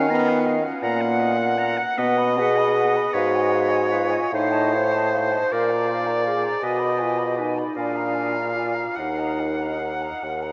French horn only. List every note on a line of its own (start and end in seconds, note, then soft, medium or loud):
0.00 0.10 C#4 medium
0.11 0.57 B3 loud
0.84 1.55 A#3 medium
1.98 2.41 B3 medium
2.39 3.18 G#4 loud
3.16 3.94 F#4 medium
3.92 4.33 F4 medium
4.34 4.77 D#4 medium
4.76 5.54 C5 medium
5.53 6.26 A#4 medium
6.27 6.66 G#4 medium
6.64 7.03 F#4 medium
7.01 7.41 F4 medium
7.39 7.78 D#4 medium
7.76 8.38 D4 medium
8.55 9.00 F4 medium
8.98 10.23 D#4 medium